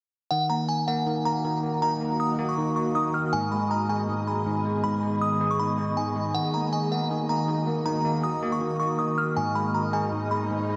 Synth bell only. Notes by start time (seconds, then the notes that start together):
0.31 F#5
0.50 A#5
0.69 G#5
0.88 F#5
1.25 A#5
1.82 A#5
2.20 D#6
2.49 C#6
2.76 C#6
2.95 D#6
3.14 F6
3.33 G#5
3.52 B5
3.71 A#5
3.89 G#5
4.27 B5
4.84 B5
5.21 D#6
5.51 C#6
5.59 B5
5.97 G#5
6.35 F#5
6.54 A#5
6.73 G#5
6.92 F#5
7.29 A#5
7.86 A#5
8.24 D#6
8.52 C#6
8.80 C#6
8.99 D#6
9.18 F6
9.37 G#5
9.55 B5
9.74 A#5
9.93 G#5
10.31 B5